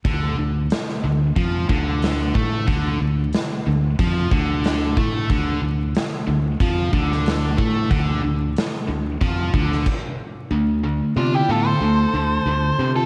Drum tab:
CC |----------------|----------------|----------------|------------x---|
HH |o---o---o---o---|o---o---o---o---|o---o---o---o---|o---o---o-------|
SD |----oo------o---|----o-------o---|----o------oo---|----o------o----|
BD |o-------o-o---o-|o-------o-o---o-|o-------o-o---o-|o-------o-o-o---|

CC |----------------|
HH |----------------|
SD |----------------|
BD |----------------|